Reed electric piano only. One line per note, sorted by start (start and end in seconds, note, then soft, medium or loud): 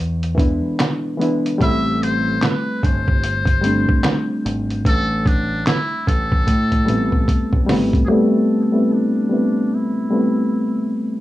0.35 0.98 E3 medium
0.35 0.99 G#3 medium
0.35 0.99 B3 medium
0.35 1.00 D4 medium
0.39 1.00 E4 loud
1.17 1.50 E3 medium
1.17 1.51 G#3 medium
1.17 1.51 B3 medium
1.17 1.52 D4 medium
1.22 1.52 E4 medium
1.58 2.76 G3 medium
1.58 2.76 A3 medium
1.58 2.77 C4 medium
1.63 2.78 E4 loud
3.61 4.78 G3 medium
3.61 4.79 A3 medium
3.61 4.80 C4 medium
3.66 4.81 D4 medium
6.85 7.47 G3 medium
6.85 7.48 A3 medium
6.85 7.49 B3 medium
6.85 7.49 C4 medium
6.89 7.50 E4 medium
7.66 7.99 G3 medium
7.66 7.99 A3 medium
7.66 8.00 B3 medium
7.66 8.00 C4 medium
7.71 8.01 E4 medium
8.08 8.52 G3 medium
8.08 8.53 A3 medium
8.08 8.53 B3 medium
8.08 8.54 C4 medium
8.13 8.54 E4 loud
8.72 9.16 G3 medium
8.72 9.16 A3 medium
8.72 9.17 B3 medium
8.72 9.18 C4 medium
8.77 9.18 E4 medium
9.29 9.91 G3 medium
9.29 9.92 A3 soft
9.29 9.92 B3 medium
9.29 9.93 C4 medium
9.34 9.93 E4 medium
10.11 11.21 G3 medium
10.11 11.21 A3 medium
10.11 11.21 B3 medium
10.11 11.21 C4 medium
10.15 11.21 E4 medium